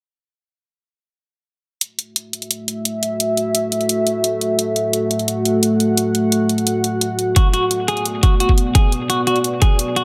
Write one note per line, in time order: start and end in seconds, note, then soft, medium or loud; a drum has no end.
1.81 7.32 A3 medium
1.81 10.04 F#4 medium
1.81 4.56 E5 medium
1.81 closed hi-hat medium
1.99 closed hi-hat medium
2.16 closed hi-hat medium
2.33 closed hi-hat medium
2.42 closed hi-hat soft
2.51 closed hi-hat medium
2.68 closed hi-hat medium
2.85 closed hi-hat medium
3.03 closed hi-hat medium
3.20 closed hi-hat medium
3.37 closed hi-hat medium
3.55 closed hi-hat medium
3.72 closed hi-hat medium
3.81 closed hi-hat soft
3.89 closed hi-hat medium
4.07 closed hi-hat medium
4.24 closed hi-hat medium
4.41 closed hi-hat medium
4.59 7.33 F#5 medium
4.59 closed hi-hat medium
4.76 closed hi-hat medium
4.93 closed hi-hat medium
5.11 closed hi-hat medium
5.19 closed hi-hat soft
5.28 closed hi-hat medium
5.45 closed hi-hat medium
5.63 closed hi-hat medium
5.80 closed hi-hat medium
5.97 closed hi-hat medium
6.15 closed hi-hat medium
6.32 closed hi-hat medium
6.49 closed hi-hat medium
6.58 closed hi-hat soft
6.67 closed hi-hat medium
6.84 closed hi-hat medium
7.01 closed hi-hat medium
7.19 closed hi-hat medium
7.36 10.04 B3 medium
7.36 7.47 F#4 medium
7.36 10.04 D5 medium
7.36 kick loud
7.36 closed hi-hat medium
7.54 7.65 F#4 medium
7.54 closed hi-hat medium
7.71 closed hi-hat medium
7.88 8.05 G#4 medium
7.88 closed hi-hat medium
7.97 closed hi-hat soft
8.05 closed hi-hat medium
8.23 8.34 F#4 medium
8.23 kick loud
8.23 closed hi-hat medium
8.40 8.51 F#4 medium
8.40 closed hi-hat medium
8.49 kick medium
8.58 closed hi-hat medium
8.75 8.91 G#4 loud
8.75 kick loud
8.75 closed hi-hat medium
8.92 closed hi-hat medium
9.10 9.21 F#4 medium
9.10 closed hi-hat medium
9.27 9.38 F#4 medium
9.27 closed hi-hat medium
9.36 closed hi-hat soft
9.44 closed hi-hat medium
9.62 9.78 G#4 medium
9.62 kick medium
9.62 closed hi-hat medium
9.79 closed hi-hat medium
9.96 10.04 F#4 medium
9.96 closed hi-hat medium